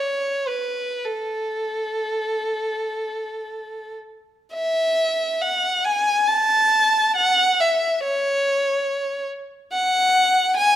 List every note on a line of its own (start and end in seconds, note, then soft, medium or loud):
0.00 0.47 C#5 medium
0.48 1.05 B4 medium
1.05 3.95 A4 medium
4.53 5.39 E5 medium
5.42 5.85 F#5 medium
5.85 6.28 G#5 medium
6.27 7.16 A5 medium
7.16 7.59 F#5 medium
7.61 8.04 E5 medium
8.03 9.27 C#5 medium
9.73 10.54 F#5 medium
10.56 10.76 G#5 medium